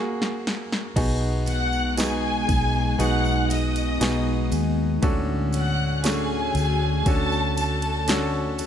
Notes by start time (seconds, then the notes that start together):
Already playing: F#2 C#3 A#3 F#4 G#4
0.22 snare
0.47 snare
0.72 snare
0.96 B1 B2 G#3 B3 D#4 F#4 G#4, kick, crash, ride, tambourine
1.46 B3 F#5 F#6, ride, tambourine
1.73 tambourine
1.97 B3 D#4 F#4 G#4 G#5, snare, ride, tambourine
2.49 B1 D#4, kick, ride, tambourine
2.98 B1 B3 D#4 F#4 G#4 F#5 F#6, ride, tambourine
3.25 tambourine
3.50 G#4 D#5 D#6, ride, tambourine
3.76 ride, tambourine
4.00 B1 B3 D#4 F#4 G#4, snare, ride, tambourine
4.52 D#2 G#4, ride, tambourine
5.02 D2 A2 D3 A3 C#4 D4 F#4 A4 C#5, kick, ride, tambourine
5.53 C#4 F#5 F#6, ride, tambourine
6.03 A3 C#4 D4 F#4 G#4 G#5, snare, ride, tambourine
6.55 D2 F#4, ride, tambourine
7.06 D2 C#4 D4 F#4 A4 A5, kick, ride, tambourine
7.32 tambourine
7.57 A4 A5, ride, tambourine
7.82 ride
8.08 C#4 D4 F#4 A4, snare, ride, tambourine
8.58 A4, ride, tambourine